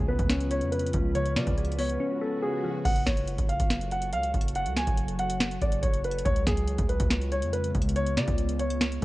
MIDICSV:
0, 0, Header, 1, 7, 480
1, 0, Start_track
1, 0, Key_signature, 3, "minor"
1, 0, Tempo, 425532
1, 1296, Time_signature, 4, 2, 24, 8
1, 10207, End_track
2, 0, Start_track
2, 0, Title_t, "Grand piano"
2, 0, Program_c, 0, 0
2, 96, Note_on_c, 0, 71, 76
2, 548, Note_off_c, 0, 71, 0
2, 578, Note_on_c, 0, 73, 84
2, 763, Note_off_c, 0, 73, 0
2, 812, Note_on_c, 0, 71, 80
2, 999, Note_off_c, 0, 71, 0
2, 1297, Note_on_c, 0, 73, 101
2, 1482, Note_off_c, 0, 73, 0
2, 1534, Note_on_c, 0, 74, 77
2, 1987, Note_off_c, 0, 74, 0
2, 2014, Note_on_c, 0, 73, 87
2, 2466, Note_off_c, 0, 73, 0
2, 2497, Note_on_c, 0, 69, 76
2, 2682, Note_off_c, 0, 69, 0
2, 2734, Note_on_c, 0, 68, 86
2, 3186, Note_off_c, 0, 68, 0
2, 3213, Note_on_c, 0, 78, 101
2, 3400, Note_off_c, 0, 78, 0
2, 3451, Note_on_c, 0, 73, 72
2, 3905, Note_off_c, 0, 73, 0
2, 3934, Note_on_c, 0, 77, 81
2, 4387, Note_off_c, 0, 77, 0
2, 4421, Note_on_c, 0, 78, 83
2, 4605, Note_off_c, 0, 78, 0
2, 4659, Note_on_c, 0, 77, 96
2, 4843, Note_off_c, 0, 77, 0
2, 5140, Note_on_c, 0, 78, 92
2, 5324, Note_off_c, 0, 78, 0
2, 5379, Note_on_c, 0, 80, 78
2, 5829, Note_off_c, 0, 80, 0
2, 5858, Note_on_c, 0, 78, 93
2, 6308, Note_off_c, 0, 78, 0
2, 6337, Note_on_c, 0, 74, 84
2, 6522, Note_off_c, 0, 74, 0
2, 6571, Note_on_c, 0, 73, 83
2, 6758, Note_off_c, 0, 73, 0
2, 6819, Note_on_c, 0, 71, 76
2, 7003, Note_off_c, 0, 71, 0
2, 7051, Note_on_c, 0, 73, 95
2, 7238, Note_off_c, 0, 73, 0
2, 7296, Note_on_c, 0, 68, 82
2, 7748, Note_off_c, 0, 68, 0
2, 7775, Note_on_c, 0, 71, 81
2, 8227, Note_off_c, 0, 71, 0
2, 8258, Note_on_c, 0, 73, 87
2, 8442, Note_off_c, 0, 73, 0
2, 8492, Note_on_c, 0, 71, 85
2, 8679, Note_off_c, 0, 71, 0
2, 8977, Note_on_c, 0, 73, 103
2, 9162, Note_off_c, 0, 73, 0
2, 9215, Note_on_c, 0, 74, 79
2, 9667, Note_off_c, 0, 74, 0
2, 9694, Note_on_c, 0, 73, 84
2, 10147, Note_off_c, 0, 73, 0
2, 10207, End_track
3, 0, Start_track
3, 0, Title_t, "Ambient pad"
3, 0, Program_c, 1, 92
3, 0, Note_on_c, 1, 49, 79
3, 0, Note_on_c, 1, 56, 72
3, 0, Note_on_c, 1, 65, 74
3, 0, Note_on_c, 1, 71, 88
3, 3178, Note_off_c, 1, 49, 0
3, 3178, Note_off_c, 1, 56, 0
3, 3178, Note_off_c, 1, 65, 0
3, 3178, Note_off_c, 1, 71, 0
3, 3217, Note_on_c, 1, 69, 74
3, 3218, Note_on_c, 1, 54, 79
3, 3218, Note_on_c, 1, 66, 72
3, 3218, Note_on_c, 1, 73, 90
3, 7019, Note_off_c, 1, 54, 0
3, 7019, Note_off_c, 1, 66, 0
3, 7019, Note_off_c, 1, 69, 0
3, 7019, Note_off_c, 1, 73, 0
3, 7057, Note_on_c, 1, 49, 82
3, 7057, Note_on_c, 1, 56, 76
3, 7057, Note_on_c, 1, 59, 75
3, 7057, Note_on_c, 1, 65, 87
3, 10207, Note_off_c, 1, 49, 0
3, 10207, Note_off_c, 1, 56, 0
3, 10207, Note_off_c, 1, 59, 0
3, 10207, Note_off_c, 1, 65, 0
3, 10207, End_track
4, 0, Start_track
4, 0, Title_t, "Synth keys"
4, 0, Program_c, 2, 88
4, 0, Control_c, 2, 64, 127
4, 0, Note_on_c, 2, 49, 98
4, 0, Note_on_c, 2, 53, 82
4, 0, Note_on_c, 2, 56, 90
4, 98, Note_on_c, 2, 59, 94
4, 337, Note_on_c, 2, 61, 99
4, 563, Note_off_c, 2, 59, 0
4, 576, Note_off_c, 2, 49, 0
4, 577, Note_on_c, 2, 59, 83
4, 816, Note_off_c, 2, 53, 0
4, 1056, Note_off_c, 2, 56, 0
4, 1057, Note_on_c, 2, 53, 81
4, 1297, Note_on_c, 2, 49, 86
4, 1524, Note_off_c, 2, 53, 0
4, 1537, Note_off_c, 2, 61, 0
4, 1537, Note_on_c, 2, 53, 83
4, 1777, Note_off_c, 2, 59, 0
4, 1777, Note_on_c, 2, 56, 86
4, 2016, Note_on_c, 2, 59, 93
4, 2256, Note_on_c, 2, 61, 103
4, 2482, Note_off_c, 2, 59, 0
4, 2496, Note_on_c, 2, 59, 85
4, 2497, Note_off_c, 2, 49, 0
4, 2737, Note_off_c, 2, 53, 0
4, 2976, Note_on_c, 2, 53, 82
4, 2977, Note_off_c, 2, 56, 0
4, 3216, Note_off_c, 2, 53, 0
4, 3216, Note_off_c, 2, 59, 0
4, 3216, Note_off_c, 2, 61, 0
4, 3230, Control_c, 2, 64, 0
4, 10207, End_track
5, 0, Start_track
5, 0, Title_t, "808-style bass"
5, 0, Program_c, 3, 38
5, 0, Note_on_c, 3, 37, 100
5, 207, Note_off_c, 3, 37, 0
5, 217, Note_on_c, 3, 37, 111
5, 696, Note_on_c, 3, 41, 95
5, 713, Note_off_c, 3, 37, 0
5, 1038, Note_off_c, 3, 41, 0
5, 1058, Note_on_c, 3, 37, 106
5, 1537, Note_on_c, 3, 49, 100
5, 1553, Note_off_c, 3, 37, 0
5, 1650, Note_off_c, 3, 49, 0
5, 1657, Note_on_c, 3, 37, 98
5, 2233, Note_off_c, 3, 37, 0
5, 3216, Note_on_c, 3, 30, 114
5, 3447, Note_off_c, 3, 30, 0
5, 3456, Note_on_c, 3, 30, 104
5, 3802, Note_off_c, 3, 30, 0
5, 3816, Note_on_c, 3, 30, 104
5, 4047, Note_off_c, 3, 30, 0
5, 4058, Note_on_c, 3, 30, 112
5, 4657, Note_on_c, 3, 37, 98
5, 4674, Note_off_c, 3, 30, 0
5, 4885, Note_off_c, 3, 37, 0
5, 4897, Note_on_c, 3, 30, 108
5, 5256, Note_on_c, 3, 37, 98
5, 5273, Note_off_c, 3, 30, 0
5, 5484, Note_off_c, 3, 37, 0
5, 5497, Note_on_c, 3, 30, 104
5, 6303, Note_off_c, 3, 30, 0
5, 6337, Note_on_c, 3, 30, 109
5, 6567, Note_off_c, 3, 30, 0
5, 6577, Note_on_c, 3, 30, 102
5, 7038, Note_off_c, 3, 30, 0
5, 7056, Note_on_c, 3, 37, 115
5, 7287, Note_off_c, 3, 37, 0
5, 7296, Note_on_c, 3, 37, 107
5, 7642, Note_off_c, 3, 37, 0
5, 7656, Note_on_c, 3, 37, 102
5, 7887, Note_off_c, 3, 37, 0
5, 7897, Note_on_c, 3, 37, 116
5, 8377, Note_on_c, 3, 41, 97
5, 8393, Note_off_c, 3, 37, 0
5, 8719, Note_off_c, 3, 41, 0
5, 8738, Note_on_c, 3, 37, 107
5, 9217, Note_on_c, 3, 49, 104
5, 9234, Note_off_c, 3, 37, 0
5, 9331, Note_off_c, 3, 49, 0
5, 9337, Note_on_c, 3, 37, 105
5, 10143, Note_off_c, 3, 37, 0
5, 10207, End_track
6, 0, Start_track
6, 0, Title_t, "Swell"
6, 0, Program_c, 4, 103
6, 1297, Note_on_c, 4, 60, 87
6, 3217, Note_off_c, 4, 60, 0
6, 10207, End_track
7, 0, Start_track
7, 0, Title_t, "Drums"
7, 216, Note_on_c, 9, 42, 51
7, 217, Note_on_c, 9, 36, 89
7, 329, Note_off_c, 9, 42, 0
7, 330, Note_off_c, 9, 36, 0
7, 335, Note_on_c, 9, 38, 110
7, 340, Note_on_c, 9, 42, 89
7, 448, Note_off_c, 9, 38, 0
7, 452, Note_off_c, 9, 42, 0
7, 459, Note_on_c, 9, 42, 52
7, 572, Note_off_c, 9, 42, 0
7, 574, Note_on_c, 9, 42, 81
7, 687, Note_off_c, 9, 42, 0
7, 691, Note_on_c, 9, 42, 49
7, 804, Note_off_c, 9, 42, 0
7, 816, Note_on_c, 9, 42, 62
7, 896, Note_off_c, 9, 42, 0
7, 896, Note_on_c, 9, 42, 63
7, 976, Note_off_c, 9, 42, 0
7, 976, Note_on_c, 9, 42, 69
7, 1052, Note_off_c, 9, 42, 0
7, 1052, Note_on_c, 9, 42, 81
7, 1057, Note_on_c, 9, 36, 91
7, 1165, Note_off_c, 9, 42, 0
7, 1170, Note_off_c, 9, 36, 0
7, 1296, Note_on_c, 9, 42, 66
7, 1409, Note_off_c, 9, 42, 0
7, 1415, Note_on_c, 9, 42, 55
7, 1528, Note_off_c, 9, 42, 0
7, 1536, Note_on_c, 9, 38, 94
7, 1540, Note_on_c, 9, 42, 82
7, 1649, Note_off_c, 9, 38, 0
7, 1653, Note_off_c, 9, 42, 0
7, 1655, Note_on_c, 9, 42, 56
7, 1657, Note_on_c, 9, 36, 97
7, 1768, Note_off_c, 9, 42, 0
7, 1770, Note_off_c, 9, 36, 0
7, 1776, Note_on_c, 9, 42, 40
7, 1857, Note_off_c, 9, 42, 0
7, 1857, Note_on_c, 9, 42, 51
7, 1936, Note_off_c, 9, 42, 0
7, 1936, Note_on_c, 9, 42, 64
7, 2014, Note_on_c, 9, 46, 91
7, 2049, Note_off_c, 9, 42, 0
7, 2127, Note_off_c, 9, 46, 0
7, 2137, Note_on_c, 9, 42, 51
7, 2249, Note_off_c, 9, 42, 0
7, 3216, Note_on_c, 9, 36, 123
7, 3216, Note_on_c, 9, 42, 66
7, 3216, Note_on_c, 9, 49, 103
7, 3329, Note_off_c, 9, 36, 0
7, 3329, Note_off_c, 9, 42, 0
7, 3329, Note_off_c, 9, 49, 0
7, 3335, Note_on_c, 9, 42, 54
7, 3448, Note_off_c, 9, 42, 0
7, 3456, Note_on_c, 9, 36, 98
7, 3456, Note_on_c, 9, 38, 94
7, 3459, Note_on_c, 9, 42, 84
7, 3569, Note_off_c, 9, 36, 0
7, 3569, Note_off_c, 9, 38, 0
7, 3572, Note_off_c, 9, 42, 0
7, 3575, Note_on_c, 9, 42, 60
7, 3687, Note_off_c, 9, 42, 0
7, 3692, Note_on_c, 9, 42, 72
7, 3805, Note_off_c, 9, 42, 0
7, 3815, Note_on_c, 9, 42, 65
7, 3816, Note_on_c, 9, 36, 94
7, 3928, Note_off_c, 9, 42, 0
7, 3929, Note_off_c, 9, 36, 0
7, 3937, Note_on_c, 9, 42, 53
7, 4050, Note_off_c, 9, 42, 0
7, 4056, Note_on_c, 9, 42, 92
7, 4057, Note_on_c, 9, 36, 94
7, 4169, Note_off_c, 9, 42, 0
7, 4170, Note_off_c, 9, 36, 0
7, 4175, Note_on_c, 9, 38, 112
7, 4180, Note_on_c, 9, 42, 90
7, 4288, Note_off_c, 9, 38, 0
7, 4293, Note_off_c, 9, 42, 0
7, 4300, Note_on_c, 9, 42, 58
7, 4413, Note_off_c, 9, 42, 0
7, 4414, Note_on_c, 9, 42, 61
7, 4527, Note_off_c, 9, 42, 0
7, 4532, Note_on_c, 9, 42, 73
7, 4644, Note_off_c, 9, 42, 0
7, 4655, Note_on_c, 9, 42, 80
7, 4767, Note_off_c, 9, 42, 0
7, 4776, Note_on_c, 9, 42, 61
7, 4888, Note_off_c, 9, 42, 0
7, 4896, Note_on_c, 9, 42, 50
7, 4897, Note_on_c, 9, 36, 95
7, 4975, Note_off_c, 9, 42, 0
7, 4975, Note_on_c, 9, 42, 66
7, 5010, Note_off_c, 9, 36, 0
7, 5055, Note_off_c, 9, 42, 0
7, 5055, Note_on_c, 9, 42, 79
7, 5135, Note_off_c, 9, 42, 0
7, 5135, Note_on_c, 9, 42, 65
7, 5248, Note_off_c, 9, 42, 0
7, 5255, Note_on_c, 9, 42, 56
7, 5368, Note_off_c, 9, 42, 0
7, 5376, Note_on_c, 9, 38, 95
7, 5379, Note_on_c, 9, 42, 81
7, 5489, Note_off_c, 9, 38, 0
7, 5492, Note_off_c, 9, 42, 0
7, 5494, Note_on_c, 9, 42, 56
7, 5497, Note_on_c, 9, 36, 102
7, 5607, Note_off_c, 9, 42, 0
7, 5609, Note_off_c, 9, 36, 0
7, 5611, Note_on_c, 9, 42, 70
7, 5724, Note_off_c, 9, 42, 0
7, 5733, Note_on_c, 9, 42, 66
7, 5846, Note_off_c, 9, 42, 0
7, 5853, Note_on_c, 9, 46, 90
7, 5856, Note_on_c, 9, 42, 51
7, 5966, Note_off_c, 9, 46, 0
7, 5968, Note_off_c, 9, 42, 0
7, 5976, Note_on_c, 9, 42, 90
7, 6088, Note_off_c, 9, 42, 0
7, 6095, Note_on_c, 9, 38, 115
7, 6100, Note_on_c, 9, 42, 94
7, 6208, Note_off_c, 9, 38, 0
7, 6213, Note_off_c, 9, 42, 0
7, 6219, Note_on_c, 9, 42, 55
7, 6331, Note_off_c, 9, 42, 0
7, 6334, Note_on_c, 9, 42, 60
7, 6336, Note_on_c, 9, 36, 104
7, 6447, Note_off_c, 9, 42, 0
7, 6449, Note_off_c, 9, 36, 0
7, 6452, Note_on_c, 9, 42, 74
7, 6564, Note_off_c, 9, 42, 0
7, 6574, Note_on_c, 9, 42, 86
7, 6577, Note_on_c, 9, 36, 101
7, 6687, Note_off_c, 9, 42, 0
7, 6690, Note_off_c, 9, 36, 0
7, 6695, Note_on_c, 9, 42, 59
7, 6808, Note_off_c, 9, 42, 0
7, 6816, Note_on_c, 9, 42, 50
7, 6896, Note_off_c, 9, 42, 0
7, 6896, Note_on_c, 9, 42, 65
7, 6976, Note_off_c, 9, 42, 0
7, 6976, Note_on_c, 9, 42, 79
7, 7056, Note_off_c, 9, 42, 0
7, 7056, Note_on_c, 9, 36, 127
7, 7056, Note_on_c, 9, 42, 68
7, 7169, Note_off_c, 9, 36, 0
7, 7169, Note_off_c, 9, 42, 0
7, 7175, Note_on_c, 9, 42, 57
7, 7287, Note_off_c, 9, 42, 0
7, 7296, Note_on_c, 9, 36, 96
7, 7296, Note_on_c, 9, 38, 96
7, 7299, Note_on_c, 9, 42, 84
7, 7408, Note_off_c, 9, 38, 0
7, 7409, Note_off_c, 9, 36, 0
7, 7412, Note_off_c, 9, 42, 0
7, 7414, Note_on_c, 9, 42, 58
7, 7527, Note_off_c, 9, 42, 0
7, 7532, Note_on_c, 9, 42, 73
7, 7645, Note_off_c, 9, 42, 0
7, 7654, Note_on_c, 9, 42, 65
7, 7656, Note_on_c, 9, 36, 95
7, 7767, Note_off_c, 9, 42, 0
7, 7769, Note_off_c, 9, 36, 0
7, 7776, Note_on_c, 9, 42, 53
7, 7889, Note_off_c, 9, 42, 0
7, 7896, Note_on_c, 9, 42, 88
7, 7897, Note_on_c, 9, 36, 95
7, 8009, Note_off_c, 9, 42, 0
7, 8010, Note_off_c, 9, 36, 0
7, 8016, Note_on_c, 9, 38, 113
7, 8021, Note_on_c, 9, 42, 89
7, 8129, Note_off_c, 9, 38, 0
7, 8133, Note_off_c, 9, 42, 0
7, 8140, Note_on_c, 9, 42, 56
7, 8253, Note_off_c, 9, 42, 0
7, 8255, Note_on_c, 9, 42, 59
7, 8368, Note_off_c, 9, 42, 0
7, 8372, Note_on_c, 9, 42, 73
7, 8485, Note_off_c, 9, 42, 0
7, 8495, Note_on_c, 9, 42, 84
7, 8608, Note_off_c, 9, 42, 0
7, 8616, Note_on_c, 9, 42, 60
7, 8729, Note_off_c, 9, 42, 0
7, 8737, Note_on_c, 9, 42, 50
7, 8738, Note_on_c, 9, 36, 95
7, 8816, Note_off_c, 9, 42, 0
7, 8816, Note_on_c, 9, 42, 66
7, 8851, Note_off_c, 9, 36, 0
7, 8896, Note_off_c, 9, 42, 0
7, 8896, Note_on_c, 9, 42, 79
7, 8976, Note_off_c, 9, 42, 0
7, 8976, Note_on_c, 9, 42, 67
7, 9089, Note_off_c, 9, 42, 0
7, 9095, Note_on_c, 9, 42, 56
7, 9208, Note_off_c, 9, 42, 0
7, 9216, Note_on_c, 9, 38, 94
7, 9219, Note_on_c, 9, 42, 81
7, 9329, Note_off_c, 9, 38, 0
7, 9332, Note_off_c, 9, 42, 0
7, 9335, Note_on_c, 9, 42, 59
7, 9337, Note_on_c, 9, 36, 95
7, 9448, Note_off_c, 9, 42, 0
7, 9450, Note_off_c, 9, 36, 0
7, 9452, Note_on_c, 9, 42, 69
7, 9565, Note_off_c, 9, 42, 0
7, 9574, Note_on_c, 9, 42, 62
7, 9687, Note_off_c, 9, 42, 0
7, 9694, Note_on_c, 9, 46, 90
7, 9696, Note_on_c, 9, 42, 52
7, 9807, Note_off_c, 9, 46, 0
7, 9809, Note_off_c, 9, 42, 0
7, 9816, Note_on_c, 9, 42, 88
7, 9929, Note_off_c, 9, 42, 0
7, 9936, Note_on_c, 9, 38, 111
7, 9940, Note_on_c, 9, 42, 92
7, 10049, Note_off_c, 9, 38, 0
7, 10053, Note_off_c, 9, 42, 0
7, 10060, Note_on_c, 9, 42, 56
7, 10172, Note_off_c, 9, 42, 0
7, 10207, End_track
0, 0, End_of_file